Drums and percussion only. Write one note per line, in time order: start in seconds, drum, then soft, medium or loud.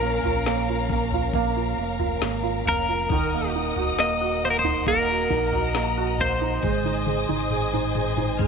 0.23 floor tom medium
0.46 snare loud
0.90 kick medium
1.12 floor tom medium
1.34 kick loud
2.00 floor tom medium
2.22 snare loud
2.66 floor tom medium
3.10 kick loud
3.10 floor tom loud
3.76 floor tom medium
3.99 snare loud
4.64 floor tom medium
4.87 kick loud
5.30 kick medium
5.52 floor tom medium
5.75 snare loud
6.19 floor tom medium
6.63 kick loud
6.63 high tom medium
6.84 high tom medium
7.06 high tom medium
7.29 high tom medium
7.51 mid tom medium
7.73 mid tom medium
7.95 mid tom medium
8.17 mid tom medium
8.39 kick loud
8.39 mid tom medium